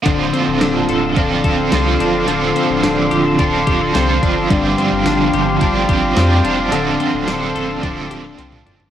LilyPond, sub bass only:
\new Staff \with { instrumentName = "Sub bass" } { \clef bass \time 4/4 \key d \minor \tempo 4 = 108 d,,8 r16 d,,16 d,,8 d,,8 d,,8 d,,8 c,8 e,,8 | d,,8 r16 d,,16 d,,8 d,,8 d,,8 d,,8 c,8 f,,8 | g,,8 r16 g,,16 g,,8 g,,8 g,,8 g,,8 f,8 e,,8 | d,,8 r16 d,,16 d,,8 d,,8 d,,8 d,,8 c,8 e,,8 | }